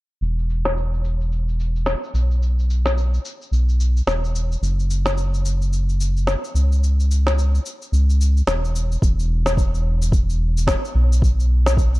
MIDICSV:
0, 0, Header, 1, 3, 480
1, 0, Start_track
1, 0, Tempo, 550459
1, 187, Time_signature, 4, 2, 24, 8
1, 10461, End_track
2, 0, Start_track
2, 0, Title_t, "Analog synth bass"
2, 0, Program_c, 0, 38
2, 183, Note_on_c, 0, 28, 89
2, 1702, Note_off_c, 0, 28, 0
2, 1863, Note_on_c, 0, 35, 79
2, 2780, Note_off_c, 0, 35, 0
2, 3064, Note_on_c, 0, 35, 86
2, 3500, Note_off_c, 0, 35, 0
2, 3546, Note_on_c, 0, 28, 83
2, 3981, Note_off_c, 0, 28, 0
2, 4025, Note_on_c, 0, 30, 96
2, 5543, Note_off_c, 0, 30, 0
2, 5707, Note_on_c, 0, 37, 84
2, 6622, Note_off_c, 0, 37, 0
2, 6908, Note_on_c, 0, 37, 90
2, 7342, Note_off_c, 0, 37, 0
2, 7384, Note_on_c, 0, 28, 88
2, 7821, Note_off_c, 0, 28, 0
2, 7866, Note_on_c, 0, 28, 93
2, 9383, Note_off_c, 0, 28, 0
2, 9545, Note_on_c, 0, 35, 83
2, 10461, Note_off_c, 0, 35, 0
2, 10461, End_track
3, 0, Start_track
3, 0, Title_t, "Drums"
3, 197, Note_on_c, 9, 69, 41
3, 284, Note_off_c, 9, 69, 0
3, 338, Note_on_c, 9, 69, 26
3, 425, Note_off_c, 9, 69, 0
3, 434, Note_on_c, 9, 69, 63
3, 521, Note_off_c, 9, 69, 0
3, 570, Note_on_c, 9, 38, 63
3, 578, Note_on_c, 9, 69, 26
3, 657, Note_off_c, 9, 38, 0
3, 665, Note_off_c, 9, 69, 0
3, 675, Note_on_c, 9, 69, 36
3, 762, Note_off_c, 9, 69, 0
3, 816, Note_on_c, 9, 69, 26
3, 903, Note_off_c, 9, 69, 0
3, 911, Note_on_c, 9, 69, 67
3, 998, Note_off_c, 9, 69, 0
3, 1054, Note_on_c, 9, 69, 30
3, 1141, Note_off_c, 9, 69, 0
3, 1152, Note_on_c, 9, 69, 42
3, 1240, Note_off_c, 9, 69, 0
3, 1295, Note_on_c, 9, 69, 27
3, 1382, Note_off_c, 9, 69, 0
3, 1393, Note_on_c, 9, 69, 68
3, 1481, Note_off_c, 9, 69, 0
3, 1533, Note_on_c, 9, 69, 28
3, 1621, Note_off_c, 9, 69, 0
3, 1624, Note_on_c, 9, 38, 67
3, 1632, Note_on_c, 9, 69, 38
3, 1711, Note_off_c, 9, 38, 0
3, 1719, Note_off_c, 9, 69, 0
3, 1776, Note_on_c, 9, 69, 27
3, 1864, Note_off_c, 9, 69, 0
3, 1873, Note_on_c, 9, 69, 68
3, 1960, Note_off_c, 9, 69, 0
3, 2016, Note_on_c, 9, 69, 27
3, 2103, Note_off_c, 9, 69, 0
3, 2115, Note_on_c, 9, 69, 43
3, 2202, Note_off_c, 9, 69, 0
3, 2260, Note_on_c, 9, 69, 28
3, 2347, Note_off_c, 9, 69, 0
3, 2357, Note_on_c, 9, 69, 70
3, 2444, Note_off_c, 9, 69, 0
3, 2491, Note_on_c, 9, 38, 64
3, 2499, Note_on_c, 9, 69, 29
3, 2578, Note_off_c, 9, 38, 0
3, 2586, Note_off_c, 9, 69, 0
3, 2597, Note_on_c, 9, 69, 42
3, 2684, Note_off_c, 9, 69, 0
3, 2739, Note_on_c, 9, 69, 28
3, 2826, Note_off_c, 9, 69, 0
3, 2835, Note_on_c, 9, 69, 72
3, 2923, Note_off_c, 9, 69, 0
3, 2980, Note_on_c, 9, 69, 30
3, 3067, Note_off_c, 9, 69, 0
3, 3079, Note_on_c, 9, 69, 42
3, 3166, Note_off_c, 9, 69, 0
3, 3218, Note_on_c, 9, 69, 29
3, 3305, Note_off_c, 9, 69, 0
3, 3316, Note_on_c, 9, 69, 77
3, 3403, Note_off_c, 9, 69, 0
3, 3462, Note_on_c, 9, 69, 30
3, 3549, Note_off_c, 9, 69, 0
3, 3552, Note_on_c, 9, 38, 72
3, 3560, Note_on_c, 9, 69, 40
3, 3639, Note_off_c, 9, 38, 0
3, 3647, Note_off_c, 9, 69, 0
3, 3701, Note_on_c, 9, 69, 27
3, 3789, Note_off_c, 9, 69, 0
3, 3798, Note_on_c, 9, 69, 69
3, 3885, Note_off_c, 9, 69, 0
3, 3942, Note_on_c, 9, 69, 28
3, 4029, Note_off_c, 9, 69, 0
3, 4040, Note_on_c, 9, 69, 45
3, 4128, Note_off_c, 9, 69, 0
3, 4182, Note_on_c, 9, 69, 30
3, 4270, Note_off_c, 9, 69, 0
3, 4278, Note_on_c, 9, 69, 70
3, 4365, Note_off_c, 9, 69, 0
3, 4410, Note_on_c, 9, 38, 63
3, 4418, Note_on_c, 9, 69, 31
3, 4497, Note_off_c, 9, 38, 0
3, 4505, Note_off_c, 9, 69, 0
3, 4514, Note_on_c, 9, 69, 44
3, 4601, Note_off_c, 9, 69, 0
3, 4657, Note_on_c, 9, 69, 28
3, 4745, Note_off_c, 9, 69, 0
3, 4756, Note_on_c, 9, 69, 73
3, 4844, Note_off_c, 9, 69, 0
3, 4899, Note_on_c, 9, 69, 32
3, 4987, Note_off_c, 9, 69, 0
3, 4996, Note_on_c, 9, 69, 42
3, 5083, Note_off_c, 9, 69, 0
3, 5138, Note_on_c, 9, 69, 29
3, 5225, Note_off_c, 9, 69, 0
3, 5236, Note_on_c, 9, 69, 79
3, 5323, Note_off_c, 9, 69, 0
3, 5380, Note_on_c, 9, 69, 31
3, 5467, Note_off_c, 9, 69, 0
3, 5470, Note_on_c, 9, 38, 71
3, 5478, Note_on_c, 9, 69, 39
3, 5557, Note_off_c, 9, 38, 0
3, 5565, Note_off_c, 9, 69, 0
3, 5620, Note_on_c, 9, 69, 30
3, 5707, Note_off_c, 9, 69, 0
3, 5718, Note_on_c, 9, 69, 68
3, 5806, Note_off_c, 9, 69, 0
3, 5862, Note_on_c, 9, 69, 29
3, 5949, Note_off_c, 9, 69, 0
3, 5961, Note_on_c, 9, 69, 45
3, 6048, Note_off_c, 9, 69, 0
3, 6104, Note_on_c, 9, 69, 30
3, 6191, Note_off_c, 9, 69, 0
3, 6202, Note_on_c, 9, 69, 69
3, 6289, Note_off_c, 9, 69, 0
3, 6337, Note_on_c, 9, 38, 62
3, 6345, Note_on_c, 9, 69, 30
3, 6424, Note_off_c, 9, 38, 0
3, 6432, Note_off_c, 9, 69, 0
3, 6440, Note_on_c, 9, 69, 41
3, 6527, Note_off_c, 9, 69, 0
3, 6583, Note_on_c, 9, 69, 28
3, 6670, Note_off_c, 9, 69, 0
3, 6678, Note_on_c, 9, 69, 73
3, 6765, Note_off_c, 9, 69, 0
3, 6820, Note_on_c, 9, 69, 32
3, 6907, Note_off_c, 9, 69, 0
3, 6919, Note_on_c, 9, 69, 42
3, 7007, Note_off_c, 9, 69, 0
3, 7060, Note_on_c, 9, 69, 30
3, 7148, Note_off_c, 9, 69, 0
3, 7159, Note_on_c, 9, 69, 76
3, 7246, Note_off_c, 9, 69, 0
3, 7300, Note_on_c, 9, 69, 31
3, 7387, Note_off_c, 9, 69, 0
3, 7389, Note_on_c, 9, 38, 68
3, 7397, Note_on_c, 9, 69, 40
3, 7476, Note_off_c, 9, 38, 0
3, 7484, Note_off_c, 9, 69, 0
3, 7540, Note_on_c, 9, 69, 29
3, 7627, Note_off_c, 9, 69, 0
3, 7636, Note_on_c, 9, 69, 70
3, 7723, Note_off_c, 9, 69, 0
3, 7778, Note_on_c, 9, 69, 31
3, 7865, Note_off_c, 9, 69, 0
3, 7867, Note_on_c, 9, 36, 103
3, 7876, Note_on_c, 9, 69, 54
3, 7954, Note_off_c, 9, 36, 0
3, 7963, Note_off_c, 9, 69, 0
3, 8018, Note_on_c, 9, 69, 32
3, 8105, Note_off_c, 9, 69, 0
3, 8249, Note_on_c, 9, 38, 68
3, 8257, Note_on_c, 9, 69, 58
3, 8336, Note_off_c, 9, 38, 0
3, 8344, Note_off_c, 9, 69, 0
3, 8347, Note_on_c, 9, 36, 99
3, 8356, Note_on_c, 9, 69, 52
3, 8434, Note_off_c, 9, 36, 0
3, 8444, Note_off_c, 9, 69, 0
3, 8498, Note_on_c, 9, 69, 30
3, 8585, Note_off_c, 9, 69, 0
3, 8738, Note_on_c, 9, 69, 64
3, 8825, Note_off_c, 9, 69, 0
3, 8826, Note_on_c, 9, 36, 104
3, 8836, Note_on_c, 9, 69, 54
3, 8913, Note_off_c, 9, 36, 0
3, 8923, Note_off_c, 9, 69, 0
3, 8979, Note_on_c, 9, 69, 30
3, 9067, Note_off_c, 9, 69, 0
3, 9220, Note_on_c, 9, 69, 58
3, 9305, Note_on_c, 9, 36, 98
3, 9307, Note_off_c, 9, 69, 0
3, 9310, Note_on_c, 9, 38, 75
3, 9318, Note_on_c, 9, 69, 52
3, 9393, Note_off_c, 9, 36, 0
3, 9397, Note_off_c, 9, 38, 0
3, 9405, Note_off_c, 9, 69, 0
3, 9460, Note_on_c, 9, 69, 30
3, 9547, Note_off_c, 9, 69, 0
3, 9701, Note_on_c, 9, 69, 54
3, 9785, Note_on_c, 9, 36, 107
3, 9788, Note_off_c, 9, 69, 0
3, 9800, Note_on_c, 9, 69, 57
3, 9872, Note_off_c, 9, 36, 0
3, 9887, Note_off_c, 9, 69, 0
3, 9940, Note_on_c, 9, 69, 33
3, 10027, Note_off_c, 9, 69, 0
3, 10171, Note_on_c, 9, 38, 68
3, 10179, Note_on_c, 9, 69, 61
3, 10258, Note_off_c, 9, 38, 0
3, 10264, Note_on_c, 9, 36, 103
3, 10266, Note_off_c, 9, 69, 0
3, 10277, Note_on_c, 9, 69, 52
3, 10351, Note_off_c, 9, 36, 0
3, 10364, Note_off_c, 9, 69, 0
3, 10418, Note_on_c, 9, 69, 30
3, 10461, Note_off_c, 9, 69, 0
3, 10461, End_track
0, 0, End_of_file